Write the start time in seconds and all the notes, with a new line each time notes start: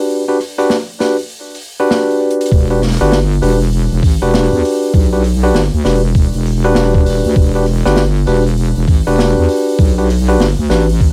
Already playing: D4 F#4 G4 B4
0.10 open hi-hat
0.28 D4 F#4 G4 B4, open hi-hat
0.40 cross-stick, open hi-hat
0.58 D4 F#4 G4 B4, open hi-hat
0.70 snare, open hi-hat
0.89 open hi-hat
1.00 D4 F#4 G4 B4, snare, open hi-hat
1.19 open hi-hat
1.30 open hi-hat
1.50 open hi-hat
1.55 open hi-hat
1.80 D4 F#4 G4 B4
1.91 snare, open hi-hat
2.10 open hi-hat
2.31 closed hi-hat
2.41 closed hi-hat
2.46 closed hi-hat
2.51 E1, kick
2.70 D4 F#4 G4 B4, open hi-hat
2.82 cross-stick, snare, open hi-hat
2.87 snare, open hi-hat
2.92 snare, open hi-hat
2.96 snare, open hi-hat
3.00 G1 D4 F#4 G4 B4, snare, open hi-hat
3.04 snare
3.07 snare
3.09 snare, open hi-hat
3.12 snare
3.32 open hi-hat
3.42 E1 D4 F#4 G4 B4, open hi-hat
3.61 open hi-hat
3.73 open hi-hat
3.92 E1, open hi-hat
4.03 A1, kick, open hi-hat
4.22 E1 D4 F#4 G4 B4, open hi-hat
4.30 open hi-hat
4.34 snare, open hi-hat
4.40 open hi-hat
4.44 open hi-hat
4.52 E2, open hi-hat
4.65 open hi-hat
4.83 open hi-hat
4.94 B1, kick, open hi-hat
5.13 D4 F#4 G4 B4, open hi-hat
5.24 open hi-hat
5.43 D4 F#4 G4 B4, open hi-hat
5.54 G1, snare, open hi-hat
5.74 D2, open hi-hat
5.85 E1 D4 F#4 G4 B4, snare, open hi-hat
5.91 open hi-hat
5.95 open hi-hat
6.15 kick, open hi-hat
6.34 E1, open hi-hat
6.46 open hi-hat
6.64 D4 F#4 G4 B4, open hi-hat
6.75 E1, snare, open hi-hat
6.94 kick, open hi-hat
6.97 open hi-hat
7.01 open hi-hat
7.03 open hi-hat
7.05 open hi-hat
7.06 open hi-hat
7.24 D2, open hi-hat
7.36 E1, kick, open hi-hat
7.55 D4 F#4 G4 B4, open hi-hat
7.66 cross-stick, open hi-hat
7.76 cross-stick
7.85 G1 D4 F#4 G4 B4, cross-stick, snare, open hi-hat
7.91 cross-stick
7.96 snare, open hi-hat
8.16 open hi-hat
8.27 E1 D4 F#4 G4 B4, open hi-hat
8.47 open hi-hat
8.57 open hi-hat
8.76 E1, open hi-hat
8.88 A1, kick, open hi-hat
9.07 E1 D4 F#4 G4 B4, open hi-hat
9.19 snare, open hi-hat
9.37 E2, open hi-hat
9.49 open hi-hat
9.68 open hi-hat
9.79 B1, kick, open hi-hat
9.98 D4 F#4 G4 B4, open hi-hat
10.09 cross-stick, open hi-hat
10.28 D4 F#4 G4 B4, open hi-hat
10.39 G1, snare, open hi-hat
10.58 D2, open hi-hat
10.70 A1 D4 F#4 G4 B4, snare, open hi-hat
10.89 open hi-hat
11.00 kick, open hi-hat